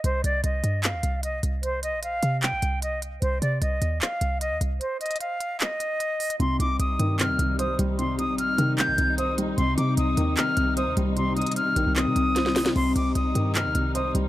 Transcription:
0.04 808-style bass C2, flute C5, closed hi-hat
0.24 808-style bass C2, flute D5, closed hi-hat
0.44 808-style bass C2, flute D#5, closed hi-hat
0.64 808-style bass G2, closed hi-hat
0.84 flute F5, clap, closed hi-hat
0.93 808-style bass D#2
1.03 808-style bass C2, closed hi-hat
1.23 flute D#5, closed hi-hat
1.43 808-style bass C2, closed hi-hat
1.63 flute C5, closed hi-hat
1.83 flute D#5, closed hi-hat
1.93 808-style bass A#1
2.03 flute F5, closed hi-hat
2.23 808-style bass C3, closed hi-hat
2.42 flute G5, clap, closed hi-hat
2.52 808-style bass A#1
2.62 808-style bass C2, closed hi-hat
2.82 flute D#5, closed hi-hat
3.02 closed hi-hat
3.21 808-style bass C2, flute C5, closed hi-hat
3.41 808-style bass C3, flute D5, closed hi-hat
3.62 808-style bass C2, flute D#5, closed hi-hat
3.82 808-style bass D#2, closed hi-hat
4.01 flute F5, clap, closed hi-hat
4.21 808-style bass C2, closed hi-hat
4.41 flute D#5, closed hi-hat
4.51 808-style bass D#2
4.61 808-style bass C2, closed hi-hat
4.80 flute C5, closed hi-hat
5.00 flute D#5, closed hi-hat
5.06 closed hi-hat
5.11 closed hi-hat
5.16 closed hi-hat
5.21 flute F5, closed hi-hat
5.41 closed hi-hat
5.60 flute D#5, clap, closed hi-hat
5.80 closed hi-hat
6.00 closed hi-hat
6.20 closed hi-hat, open hi-hat
6.30 closed hi-hat
6.40 808-style bass C2, grand piano C3, string section C3 G3 D#4, flute C6, closed hi-hat
6.60 808-style bass C2, grand piano C3, flute D6, closed hi-hat
6.79 808-style bass C2, flute D#6, closed hi-hat
6.99 808-style bass G2, grand piano D#3, closed hi-hat
7.19 grand piano C3, flute F6, clap, closed hi-hat
7.29 808-style bass D#2
7.39 808-style bass C2, grand piano C3, closed hi-hat
7.59 grand piano C5, flute D#6, closed hi-hat
7.79 808-style bass C2, grand piano G3, closed hi-hat
7.99 grand piano C3, flute C6, closed hi-hat
8.18 grand piano C3, flute D#6, closed hi-hat
8.29 808-style bass A#1
8.38 flute F6, closed hi-hat
8.58 808-style bass C3, grand piano D#3, closed hi-hat
8.78 grand piano C3, flute G6, clap, closed hi-hat
8.88 808-style bass A#1
8.98 808-style bass C2, grand piano C3, closed hi-hat
9.18 grand piano C5, flute D#6, closed hi-hat
9.38 grand piano G3, closed hi-hat
9.57 808-style bass C2, grand piano C3, string section G3, flute C6, closed hi-hat
9.77 grand piano C3, 808-style bass C3, flute D6, closed hi-hat
9.97 808-style bass C2, flute D#6, closed hi-hat
10.17 808-style bass D#2, grand piano D#3, closed hi-hat
10.37 grand piano C3, flute F6, clap, closed hi-hat
10.57 808-style bass C2, grand piano C3, closed hi-hat
10.77 grand piano C5, flute D#6, closed hi-hat
10.87 808-style bass D#2
10.97 808-style bass C2, grand piano G3, closed hi-hat
11.16 grand piano C3, flute C6, closed hi-hat
11.36 grand piano C3, flute D#6, closed hi-hat
11.42 closed hi-hat
11.47 closed hi-hat
11.52 closed hi-hat
11.56 flute F6, closed hi-hat
11.76 808-style bass A#1, grand piano D#3, closed hi-hat
11.86 808-style bass C2
11.96 grand piano C3, flute D#6, clap, closed hi-hat
12.06 808-style bass C3
12.16 808-style bass C2, grand piano C3, closed hi-hat
12.36 grand piano C5, snare, closed hi-hat
12.46 snare
12.56 grand piano G3, snare, closed hi-hat, open hi-hat
12.66 snare, closed hi-hat
12.76 808-style bass C2, grand piano C3, string section D#4, flute C6, crash
12.95 808-style bass C2, grand piano C3, flute D6, closed hi-hat
13.15 808-style bass C2, flute D#6, closed hi-hat
13.35 808-style bass G2, grand piano D#3, closed hi-hat
13.55 grand piano C3, flute F6, clap, closed hi-hat
13.65 808-style bass D#2
13.75 808-style bass C2, grand piano C3, closed hi-hat
13.95 grand piano C5, flute D#6, closed hi-hat
14.15 808-style bass C2, grand piano G3, closed hi-hat

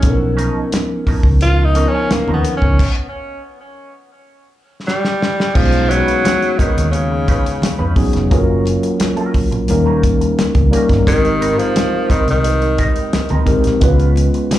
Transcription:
Already playing: tenor saxophone C#4
0.02 fingered electric bass B1, tine electric piano F3 B3 C#4 D#4 A4, kick, closed hi-hat, muted conga
0.10 tine electric piano A#4
0.37 clean electric guitar F3 C#4 D#4 A#4, closed hi-hat
0.72 muted clean electric guitar stroke, snare, closed hi-hat, high conga
1.07 clean electric guitar F3 C#4 D#4 A#4, muted fingered electric bass stroke, kick, open hi-hat, muted conga, low conga
1.23 fingered electric bass C#2, muted clean electric guitar stroke, kick
1.41 tenor saxophone F4, muted clean electric guitar stroke, closed hi-hat, low conga
1.59 muted clean electric guitar stroke
1.64 tenor saxophone D#4
1.74 tine electric piano F3 B3 C#4 D4 A#4, clean electric guitar F3 C#4 D#4 A#4, closed hi-hat
1.82 tine electric piano D#4
1.88 tenor saxophone C#4
1.93 muted clean electric guitar stroke
2.11 tenor saxophone A#3, muted clean electric guitar stroke, muted fingered electric bass stroke, snare, closed hi-hat, high conga
2.28 fingered electric bass D#2, clean electric guitar F3 C#4 D#4 A#4, high conga
2.34 tenor saxophone B3
2.45 muted clean electric guitar stroke, closed hi-hat
2.57 tenor saxophone C#4
2.62 fingered electric bass C#2, muted clean electric guitar stroke, kick
2.79 kick, crash
4.87 tenor saxophone G3, snare
5.05 snare
5.22 snare
5.40 snare
5.54 fingered electric bass B1, tenor saxophone F3, tine electric piano G#3 B3 C#4 D#4 G#4, kick, crash, muted conga
5.72 closed hi-hat
5.89 tenor saxophone F#3, clean electric guitar G#3 C#4 D#4 B4, closed hi-hat
6.08 closed hi-hat
6.25 muted clean electric guitar stroke, snare, closed hi-hat, high conga
6.42 closed hi-hat
6.58 tenor saxophone D#3, clean electric guitar G#3 C#4 D#4 B4, muted fingered electric bass stroke, kick, closed hi-hat, muted conga, low conga
6.77 fingered electric bass D#2, muted clean electric guitar stroke, closed hi-hat
6.91 tenor saxophone C#3, muted clean electric guitar stroke, closed hi-hat
7.12 muted clean electric guitar stroke
7.28 clean electric guitar G#3 C#4 D#4 B4, kick, closed hi-hat
7.45 muted clean electric guitar stroke, closed hi-hat
7.62 muted clean electric guitar stroke, muted fingered electric bass stroke, snare, closed hi-hat, high conga
7.79 fingered electric bass F2, clean electric guitar G#3 C#4 D#4 B4, high conga
7.96 tine electric piano F#3 B3 C#4 D#4 G#4, muted clean electric guitar stroke, kick, open hi-hat
8.13 fingered electric bass F1, muted clean electric guitar stroke, snare, closed hi-hat
8.30 fingered electric bass F#1, tine electric piano F#3 A#3 C#4 F4 G#4, clean electric guitar F#3 C#4 F4 A#4, kick, closed hi-hat, muted conga
8.38 tine electric piano A#4
8.66 closed hi-hat, muted conga
8.83 muted clean electric guitar stroke, closed hi-hat
9.00 muted clean electric guitar stroke, snare, closed hi-hat, high conga
9.17 clean electric guitar F#3 C#4 F4 A#4, closed hi-hat
9.34 muted clean electric guitar stroke, muted fingered electric bass stroke, kick, open hi-hat, muted conga
9.52 fingered electric bass A#1, muted clean electric guitar stroke, closed hi-hat
9.68 fingered electric bass D#2, tine electric piano G3 A#3 C#4 D#4 A#4, muted clean electric guitar stroke, closed hi-hat, low conga
9.86 clean electric guitar A#3 C#4 G4 A#4
10.03 kick, closed hi-hat
10.21 muted clean electric guitar stroke, closed hi-hat
10.38 muted clean electric guitar stroke, muted fingered electric bass stroke, snare, closed hi-hat, high conga
10.55 fingered electric bass C#2, kick, closed hi-hat, high conga
10.71 tine electric piano G3 A#3 C#4 D#4 A#4, clean electric guitar A#3 C#4 G4 A#4, closed hi-hat
10.89 fingered electric bass G1, muted clean electric guitar stroke, kick, snare, closed hi-hat
11.06 fingered electric bass G#1, tenor saxophone D#3, tine electric piano G#3 C4 D#4 G4 A#4, kick, closed hi-hat, muted conga
11.25 closed hi-hat
11.41 clean electric guitar G3 C4 D#4 A#4, closed hi-hat, muted conga
11.58 tenor saxophone F3, closed hi-hat
11.76 muted clean electric guitar stroke, snare, closed hi-hat, high conga
12.09 tenor saxophone D#3, clean electric guitar G3 C4 D#4 A#4, muted fingered electric bass stroke, kick, closed hi-hat, muted conga, low conga
12.28 fingered electric bass C2, tenor saxophone D#3, muted clean electric guitar stroke, closed hi-hat
12.44 muted clean electric guitar stroke, closed hi-hat
12.62 muted clean electric guitar stroke, closed hi-hat
12.78 clean electric guitar G3 C4 D#4 A#4, kick, closed hi-hat
12.96 muted clean electric guitar stroke, closed hi-hat
13.13 muted clean electric guitar stroke, muted fingered electric bass stroke, snare, closed hi-hat, high conga
13.29 fingered electric bass D2, clean electric guitar G3 C4 D#4 A#4, closed hi-hat, high conga
13.46 tine electric piano G#3 C4 D#4 G4 A#4, muted clean electric guitar stroke, kick, closed hi-hat
13.64 fingered electric bass A#1, muted clean electric guitar stroke, snare, closed hi-hat
13.80 fingered electric bass C#2, tine electric piano G#3 B3 C#4 F4 B4, clean electric guitar G#3 C#4 F4 B4, kick, closed hi-hat, muted conga
13.99 closed hi-hat
14.16 closed hi-hat, muted conga
14.34 muted clean electric guitar stroke, closed hi-hat
14.51 muted clean electric guitar stroke, snare, closed hi-hat, high conga

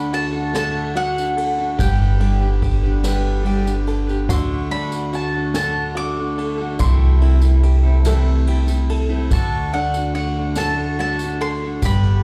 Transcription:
Already playing: upright bass D2, harmonium D3 A3 F#4, five-string banjo D4, steel-string acoustic guitar D4 F#4 A4, mandolin B5
0.13 five-string banjo F#4, mandolin A5, ride, tambourine
0.33 steel-string acoustic guitar D4 F#4 A4
0.53 steel-string acoustic guitar D3 A3 D4 F#4 A4, five-string banjo A4, mandolin A5, snare, ride, tambourine
0.94 steel-string acoustic guitar A3 D4 F#4 A4, five-string banjo F#4, mandolin F#5, ride
1.15 steel-string acoustic guitar D4 F#4 A4, tambourine
1.37 five-string banjo A4, ride
1.58 steel-string acoustic guitar D4 F#4 A4
1.79 upright bass G1, steel-string acoustic guitar G3 D4 G4 B4, harmonium B3 G4, five-string banjo G4, mandolin G5, kick, ride, tambourine
2.19 steel-string acoustic guitar G3 D4 G4 B4, five-string banjo G4, ride
2.40 steel-string acoustic guitar D4 G4 B4
2.62 five-string banjo G4, kick, ride, tambourine
2.83 steel-string acoustic guitar D4 G4 B4
3.03 steel-string acoustic guitar G3 D4 G4 B4, five-string banjo B4, snare, ride, tambourine
3.43 steel-string acoustic guitar G3 D4 G4, five-string banjo G4, ride
3.47 steel-string acoustic guitar B4
3.63 steel-string acoustic guitar D4 G4 B4, tambourine
3.87 five-string banjo A4, ride, tambourine
4.07 steel-string acoustic guitar D4 G4 B4, tambourine
4.28 upright bass D2, steel-string acoustic guitar D3 A3 D4, harmonium A3 F#4, five-string banjo F#4, mandolin C6, kick, ride, tambourine
4.32 steel-string acoustic guitar F#4 A4
4.71 steel-string acoustic guitar A3 D4 F#4 A4, five-string banjo D4, mandolin B5, ride
4.92 steel-string acoustic guitar D4 F#4 A4, tambourine
5.13 five-string banjo F#4, mandolin A5, ride, tambourine
5.34 steel-string acoustic guitar D4 F#4 A4
5.54 steel-string acoustic guitar D3 A3 D4 F#4 A4, five-string banjo A4, mandolin A5, snare, ride, tambourine
5.95 steel-string acoustic guitar A3 D4 F#4, five-string banjo F#4, mandolin D6, ride
5.99 steel-string acoustic guitar A4
6.17 steel-string acoustic guitar F#4 A4
6.21 steel-string acoustic guitar D4
6.38 five-string banjo A4, ride
6.58 steel-string acoustic guitar F#4 A4
6.62 steel-string acoustic guitar D4
6.79 upright bass C2, harmonium C3 A3 E4, steel-string acoustic guitar C3 E3 A3 C4 E4 A4, five-string banjo F#4, mandolin C6, kick, ride, tambourine
7.21 steel-string acoustic guitar A3 C4 E4, five-string banjo E4, ride
7.25 steel-string acoustic guitar A4
7.40 steel-string acoustic guitar C4 E4 A4, tambourine
7.45 steel-string acoustic guitar A3
7.63 five-string banjo G4, ride, tambourine
7.83 steel-string acoustic guitar A3 C4 E4 A4
8.05 steel-string acoustic guitar C3 E3 A3 C4 E4 A4, five-string banjo A4, snare, ride, tambourine
8.47 steel-string acoustic guitar A3 C4 E4 A4, five-string banjo G4, ride
8.67 steel-string acoustic guitar A3 C4 E4 A4, tambourine
8.89 five-string banjo A4, ride
9.09 steel-string acoustic guitar A3 C4 E4 A4
9.30 upright bass D2, steel-string acoustic guitar D3 A3 D4 F#4 A4, harmonium D3 F#4, five-string banjo F#4, mandolin A5, kick, ride, tambourine
9.72 steel-string acoustic guitar A3 D4 F#4 A4, five-string banjo D4, mandolin F#5, ride
9.94 steel-string acoustic guitar D4 F#4 A4, tambourine
10.15 five-string banjo F#4, mandolin F#5, ride, tambourine
10.36 steel-string acoustic guitar D4 F#4 A4
10.55 steel-string acoustic guitar D3 A3 D4 F#4 A4, five-string banjo A4, mandolin A5, snare, ride, tambourine
10.99 steel-string acoustic guitar A3 D4 F#4 A4, five-string banjo F#4, mandolin A5, ride
11.19 steel-string acoustic guitar A4, tambourine
11.24 steel-string acoustic guitar D4 F#4
11.40 five-string banjo A4, mandolin C6, ride
11.63 steel-string acoustic guitar D4 F#4 A4
11.82 upright bass G1, harmonium G3 B3, steel-string acoustic guitar G3 D4 G4 B4, five-string banjo G4, mandolin B5, kick, ride, tambourine
12.04 tambourine

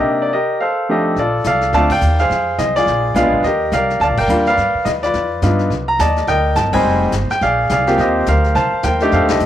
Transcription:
Already playing: grand piano C3 A#3 D4 D#4 G4 A#4 D#5
0.22 grand piano D5
0.33 grand piano G4 A#4 D#5
0.60 grand piano A4 C5 F5
0.89 grand piano F2 A3 D4 D#4 G4 A4 D#5
1.16 upright bass A#1, grand piano F4 A4 D5, brush sweep, snare
1.44 upright bass C2, grand piano A4 D5 F5, snare, hi-hat pedal
1.61 snare
1.73 upright bass D2, grand piano A3 C4 D4 F4 D5 F5 A5, brush sweep, snare
1.90 grand piano D5 G5, kick, crash
2.01 upright bass D#2, hi-hat pedal
2.19 grand piano G#4 C5 F5, snare
2.30 upright bass F2, brush sweep, snare
2.58 upright bass C2, grand piano D#5, snare, hi-hat pedal
2.76 grand piano F4 G#4 D5, snare
2.86 upright bass A#1, brush sweep, snare
3.15 upright bass B1, grand piano G#3 B3 D4 F4 G#4 D5 F5, snare, hi-hat pedal
3.25 upright bass A#1
3.33 upright bass G#1
3.43 upright bass D#2, grand piano G4 A#4 D#5, brush sweep, snare
3.72 upright bass C2, grand piano A#4 D5 F5, snare, hi-hat pedal
3.90 snare
4.00 upright bass D2, grand piano D5 F5 A5, brush sweep, snare
4.09 upright bass A#1
4.18 upright bass G1, grand piano A#4 D5 G5, kick, crash
4.28 upright bass D#2, grand piano G3 A#3 D4 F4, hi-hat pedal
4.46 grand piano B4 D5 F5, snare
4.57 upright bass G2, brush sweep, snare
4.74 muted upright bass stroke
4.85 upright bass D#2, grand piano D#5, snare, hi-hat pedal
5.03 grand piano F4 B4 D5, snare
5.14 upright bass F2, brush sweep, snare
5.42 upright bass G2, grand piano B3 D4 D#4 F4, snare, hi-hat pedal
5.59 snare
5.70 upright bass C2, brush sweep, snare
5.88 grand piano A#5
5.99 upright bass D#2, grand piano D5 D#5 A5, snare, hi-hat pedal
6.16 snare
6.27 upright bass D2, grand piano A#4 D#5 G5, brush sweep, snare
6.55 upright bass G1, grand piano A5, snare, hi-hat pedal
6.73 grand piano G3 G#3 C4 D#4 C5 D#5 G#5, kick, crash
6.84 upright bass F1, brush sweep
7.12 upright bass G1, snare, hi-hat pedal
7.30 grand piano G5, snare
7.41 upright bass A#1, grand piano G#4 D5 F5, brush sweep, snare
7.69 upright bass C2, grand piano G#4 D5 F5, snare, hi-hat pedal
7.87 grand piano A#3 C4 F4 G4, snare
7.98 upright bass D#2, grand piano G4 C5 D#5, brush sweep, snare
8.26 upright bass D2, grand piano A#4 C5 F5, snare, hi-hat pedal
8.44 snare
8.55 upright bass C2, grand piano C5 F5 A5, brush sweep, snare
8.72 muted upright bass stroke
8.83 upright bass D#2, grand piano A#4 C5 G5, snare, hi-hat pedal
9.00 grand piano A3 D4 D#4 G4, snare
9.12 upright bass F2, grand piano A4 C5 F5, brush sweep, snare
9.22 upright bass D#2
9.28 upright bass C2, grand piano G4 A4 D#5, snare, ride
9.40 upright bass G2, hi-hat pedal

